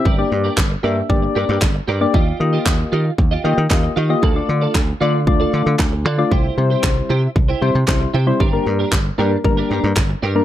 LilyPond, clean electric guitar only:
\new Staff \with { instrumentName = "Clean electric guitar" } { \time 4/4 \key g \dorian \tempo 4 = 115 <g' bes' d''>8 r16 <g' bes' d''>16 r8 <g' bes' d''>16 r8. <g' bes' d''>16 <g' bes' d''>16 r8 <g' bes' d''>16 r16 | <f' g' ees''>8 r16 <f' g' ees''>16 r8 <f' g' ees''>16 r8 <f' g' ees''>16 <f' g' ees''>16 r8. <f' g' ees''>16 r16 | <f' a' d''>8 r16 <f' a' d''>16 r8 <f' a' d''>16 r8 <f' a' d''>16 <f' a' d''>16 r8. <f' a' d''>16 r16 | <e' g' c''>8 r16 <e' g' c''>16 r8 <e' g' c''>16 r8 <e' g' c''>16 <e' g' c''>16 r8. <e' g' c''>16 r16 |
<d' g' bes'>8 r16 <d' g' bes'>16 r8 <d' g' bes'>16 r8 <d' g' bes'>16 <d' g' bes'>16 r8. <d' g' bes'>16 r16 | }